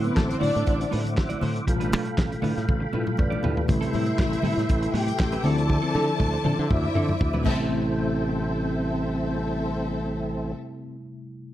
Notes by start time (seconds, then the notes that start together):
Already playing: D3 F#3 C4 E4 C5 E5 F#5 D6
0.04 B3 B4, muted clean electric guitar stroke, closed hi-hat
0.16 A1 A3 A4, kick, snare, clap, muted conga, high conga
0.29 C4 C5, muted clean electric guitar stroke, closed hi-hat
0.39 A2 A3 D4 E4 F#4 C5 D5, open hi-hat, low conga
0.54 A2, muted clean electric guitar stroke, snare, closed hi-hat
0.65 A1, muted clean electric guitar stroke, kick, closed hi-hat, muted conga
0.79 muted clean electric guitar stroke, closed hi-hat
0.91 A2 A3 E4 F#4 C5, open hi-hat, muted conga
1.04 muted clean electric guitar stroke, closed hi-hat, high conga
1.15 A1, muted clean electric guitar stroke, kick, snare, clap
1.29 A3 E4 F#4 D5, closed hi-hat, high conga
1.41 A2 A3 E4 F#4 C5, open hi-hat, muted conga, high conga, low conga
1.55 muted clean electric guitar stroke, closed hi-hat
1.66 A1 A#2 G3 A3 F4 A4 F5 G5 B5, muted clean electric guitar stroke, kick, closed hi-hat
1.72 B2
1.80 A3 D4 F4 B4, closed hi-hat
1.92 A2 A3 D4 F4 B4, open hi-hat, muted conga, high conga
2.05 muted clean electric guitar stroke, closed hi-hat
2.18 A1, kick, snare, clap, muted conga, high conga
2.31 muted clean electric guitar stroke, closed hi-hat
2.42 A2 A3 D4 F4 B4, open hi-hat, low conga
2.56 A2, muted clean electric guitar stroke, snare, closed hi-hat
2.67 A1, muted clean electric guitar stroke, kick, high tom, muted conga
2.80 muted clean electric guitar stroke, high tom
2.93 A2 B2 G3 A3 D4 F4 B4, muted conga
3.06 muted clean electric guitar stroke, mid tom, high conga
3.17 A1 B4 D5, muted clean electric guitar stroke, kick, mid tom, muted conga
3.30 A3 D4 F4 D5, high conga
3.42 A2 A3 D4 F4 G4 B4, floor tom, high conga, low conga
3.56 muted clean electric guitar stroke, floor tom
3.68 A1 C3 G3 A3 E4 A4 E5 G5 C6, muted clean electric guitar stroke, kick, closed hi-hat, muted conga, low conga
3.81 G3 C4 E4 A4, closed hi-hat
3.93 A2 G3 C4 E4 A4, open hi-hat, muted conga, high conga
4.06 muted clean electric guitar stroke, closed hi-hat
4.19 A1, kick, snare, clap, muted conga, high conga
4.32 muted clean electric guitar stroke, closed hi-hat
4.42 A2 G3 C4 E4 A4, open hi-hat, muted conga, low conga
4.57 A2, muted clean electric guitar stroke, snare, closed hi-hat
4.69 A1, muted clean electric guitar stroke, kick, closed hi-hat
4.82 muted clean electric guitar stroke, closed hi-hat
4.94 A2 G3 C4 E4 G4 A4 G5, open hi-hat
5.07 muted clean electric guitar stroke, closed hi-hat, high conga
5.18 A1, muted clean electric guitar stroke, kick, snare, clap, muted conga
5.32 G3 C4 E4 B4, closed hi-hat, high conga
5.43 D2 D3 F3 C4 E4 A4 C5 D5 A5 D6, open hi-hat, muted conga, high conga, low conga
5.58 muted clean electric guitar stroke, closed hi-hat
5.69 muted clean electric guitar stroke, kick, high tom, muted conga, low conga
5.82 F3 C4 E4 A4
5.94 D3 F3 C4 E4 A4, high tom, high conga
6.07 muted clean electric guitar stroke
6.19 D2, kick, mid tom, high conga
6.33 muted clean electric guitar stroke
6.44 D3 F3 C4 E4 A4, mid tom, low conga
6.58 D3, muted clean electric guitar stroke
6.69 D2 E4 E5, muted clean electric guitar stroke, kick, mid tom, muted conga
6.84 muted clean electric guitar stroke, mid tom
6.95 D3 F3 C4 E4 A4, mid tom
7.08 muted clean electric guitar stroke, mid tom, high conga
7.19 D2, muted clean electric guitar stroke, kick, floor tom, muted conga
7.33 F3 C4 E4 B4, floor tom, high conga
7.41 C3 G3 E4 A4 C5, high conga
7.45 A1 A3 C4 E4 A4 E5 G5, kick, crash